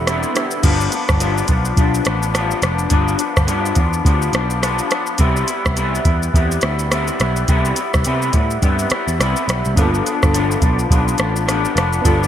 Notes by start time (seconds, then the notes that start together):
Already playing: E1 B3 D4 E4 A4
0.07 C3 G3 B3 E4, cross-stick, closed hi-hat, shaker
0.23 shaker
0.34 G3 B3 D4 E4 G4, cross-stick, closed hi-hat, shaker
0.51 shaker
0.62 G1 G2 F3 B3 D4, kick, closed hi-hat, crash, shaker
0.81 shaker
0.92 F3 B3 D4, closed hi-hat, shaker
1.09 G1, kick, cross-stick, shaker
1.20 G2 F3 B3 D4, closed hi-hat, shaker
1.38 shaker
1.48 B1 F3 B3 D4, kick, closed hi-hat, shaker
1.65 shaker
1.76 B1 G2 F3 B3 D4, kick, closed hi-hat, shaker
1.94 shaker
2.05 A1 F3 B3 D4, cross-stick, closed hi-hat, shaker
2.23 shaker
2.33 G2 F3 B3 D4, cross-stick, closed hi-hat, shaker
2.51 shaker
2.62 F1 F3 B3 D4, cross-stick, closed hi-hat, shaker
2.79 shaker
2.89 G1 G2 F3 B3 D4, kick, closed hi-hat, shaker
3.08 shaker
3.17 F3 B3 D4, closed hi-hat, shaker
3.37 G1, kick, cross-stick, shaker
3.46 G2 F3 B3 D4, closed hi-hat, shaker
3.66 shaker
3.75 E2 F3 B3 D4, kick, closed hi-hat, shaker
3.93 shaker
4.04 D2 G2 F3 B3 D4, kick, closed hi-hat, shaker
4.22 shaker
4.33 B1 F3 B3 D4, cross-stick, closed hi-hat, shaker
4.50 shaker
4.60 G2 F3 B3 D4, cross-stick, closed hi-hat, shaker
4.79 shaker
4.90 F3 B3 D4, cross-stick, closed hi-hat, shaker
5.06 shaker
5.18 C2 C3 G3 B3 E4, kick, closed hi-hat, shaker
5.37 shaker
5.47 G3 B3 E4, closed hi-hat, shaker
5.66 C2, kick, cross-stick, shaker
5.75 C3 G3 B3 E4, closed hi-hat, shaker
5.95 shaker
6.05 E2 G3 B3 E4, kick, closed hi-hat, shaker
6.23 shaker
6.34 E2 C3 G3 B3 E4, kick, closed hi-hat, shaker
6.51 shaker
6.61 D2 G3 B3 E4, cross-stick, closed hi-hat, shaker
6.79 shaker
6.90 C3 G3 B3 E4, cross-stick, closed hi-hat, shaker
7.07 shaker
7.20 B1 G3 B3 E4, cross-stick, closed hi-hat, shaker
7.36 shaker
7.48 C2 C3 G3 B3 E4, kick, closed hi-hat, shaker
7.65 shaker
7.76 G3 B3 E4, closed hi-hat, shaker
7.94 C2, kick, cross-stick, shaker
8.04 C3 G3 B3 E4, closed hi-hat, shaker
8.22 shaker
8.33 A2 G3 B3 E4, kick, closed hi-hat, shaker
8.51 shaker
8.62 G2 C3 G3 B3 E4, kick, closed hi-hat, shaker
8.79 shaker
8.90 B3 E4, muted picked electric bass stroke, cross-stick, closed hi-hat, shaker
8.94 G3
9.08 E2, shaker
9.19 C2 C3 G3 B3 E4, cross-stick, closed hi-hat, shaker
9.36 shaker
9.47 B1 G3 B3 E4, cross-stick, closed hi-hat, shaker
9.65 C2, shaker
9.74 G1 G2 F3 A#3 B3 D4 F4, kick, closed hi-hat, shaker
9.78 B3 D4 A4
9.94 shaker
10.05 F3 B3 D4, closed hi-hat, shaker
10.23 G1, kick, cross-stick, shaker
10.32 G2 F3 B3 D4, closed hi-hat, shaker
10.51 shaker
10.61 B1 F3 B3 D4, kick, closed hi-hat, shaker
10.79 shaker
10.89 B1 G2 F3 B3 D4, kick, closed hi-hat, shaker
11.08 shaker
11.17 A1 F3 B3 D4, cross-stick, closed hi-hat, shaker
11.36 shaker
11.46 G2 F3 B3 D4, cross-stick, closed hi-hat, shaker
11.65 shaker
11.74 F1 F3 B3 D4, cross-stick, closed hi-hat, shaker
11.93 shaker
12.02 G1 G2 F3 B3 D4 F4, kick, closed hi-hat, shaker
12.06 A4
12.23 shaker